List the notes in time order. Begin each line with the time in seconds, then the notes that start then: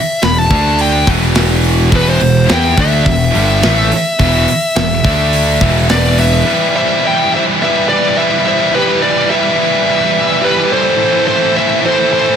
Already playing: E5
0.22 E1 E2 B2 B5, snare, open hi-hat
0.38 A5
0.50 D2 D3 A3 D4, kick
0.79 G5, open hi-hat
1.07 E1 E2 B2 E3, kick, open hi-hat
1.35 snare, open hi-hat
1.64 open hi-hat
1.91 E1 E2 B2 E3, kick, open hi-hat
1.96 B4
2.10 C5
2.19 E1 E2 B2, open hi-hat
2.47 E3 B3 E4, snare, open hi-hat
2.51 E2 G5
2.77 D2 D3 A3 D4 E5, kick, open hi-hat
3.05 E1 E2 B2, kick, open hi-hat
3.33 G1 G2 D3 G3, open hi-hat
3.62 A1 A2 E3 A3, snare, open hi-hat
3.91 muted distorted electric guitar stroke, muted picked electric bass stroke, open hi-hat
4.19 E1 E2 B2 E3, kick, open hi-hat
4.48 open hi-hat
4.76 E1 E2 B2, snare, open hi-hat
5.03 D2 D3 A3 D4, kick, open hi-hat
5.33 open hi-hat
5.61 E1 E2 B2 E3, kick
5.89 B4 D5, snare, open hi-hat
6.18 B4 E5, open hi-hat
6.45 E3 G3 B3 E4
6.53 E3 G3
6.59 E3 G3
6.69 E3 G3
6.76 E3 G3 C5 E5
6.84 E3 G3
6.92 E3 G3
6.99 E3 G3
7.03 E3 B3 E4 E5 G5
7.09 G3
7.15 E3 G3
7.23 E3 G3
7.30 E3 G3 B3 E4
7.34 C5 E5
7.39 E3 G3
7.46 E3 G3
7.53 E3 G3
7.60 E3 G3 B3 E4 B4 E5
7.69 E3 G3
7.78 E3 G3
7.84 E3 G3
7.89 E3 G3 B4 D5
8.01 E3 G3
8.08 E3 G3
8.15 E3 G3 B3 E4 E5
8.19 E3 B4
8.25 G3
8.30 E3 G3
8.40 E3 G3
8.44 E3 B3 E4 C5 E5
8.49 G3
8.55 E3 G3
8.63 E3 G3
8.71 E3 G3 B3 E4 G4 B4
8.79 E3 G3
8.87 E3 G3
8.95 E3 G3
9.02 E3 G3 B4 D5
9.10 E3 G3
9.18 E3 G3
9.26 E3 G3
9.30 E3 B3 E4 B4 E5
9.35 G3
9.42 E3 G3
9.49 E3 G3
9.55 E3 G3 B3 E4
9.63 E3 G3
9.72 E3 G3
9.79 E3 G3
9.86 E3 G3 B3 E4
9.95 E3 G3
10.02 E3 G3
10.10 E3 G3
10.19 E3 G3
10.25 E3 G3
10.33 E3 G3
10.40 E3 G3 B3 E4 G4
10.45 E3 G3 B4
10.51 G3
10.57 E3 G3
10.64 E3 G3
10.69 E3 B3 E4 A4 C5
10.74 G3
10.79 E3 G3
10.88 E3 G3
10.95 A2 E3 A3 C4 E4
11.03 A2 E3
11.10 A2 E3
11.18 A2 E3
11.26 A2 E3 A4 C5
11.35 A2 E3
11.42 A2 E3
11.49 A2 E3
11.54 A2 A3 C4 E4 C5 E5
11.59 E3
11.65 A2 E3
11.73 A2 E3
11.81 A2 E3 A3 C4 E4
11.85 A2 A4 C5
11.90 E3
11.97 A2 E3
12.05 A2 E3
12.11 A2 E3 A3 C4 E4 A4 C5
12.21 A2 E3
12.27 A2 E3